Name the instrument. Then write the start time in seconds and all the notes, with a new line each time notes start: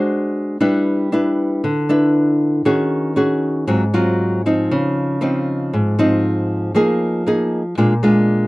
nylon-string guitar
Already playing: G#3 D4 F#4 C5
0.61 G3 D4 E4 B4
1.12 D4 E4 B4
1.64 D3
1.89 D4 E4 B4
2.65 D#3 C#4 F#4 G#4
3.16 C#4 F#4 G#4
3.67 G#2 F#3 C4 F4
3.94 F#3 C4 F4
4.46 F3 C4 D#4
4.71 C#3
5.21 F3 C4 D#4
5.73 G#2
5.99 F3 C4 D#4
6.75 F3 A#3 D#4 G#4
7.27 A#3 D#4 G#4
7.78 A#2 G#3 D4 F4
8.03 G#3 D4 F4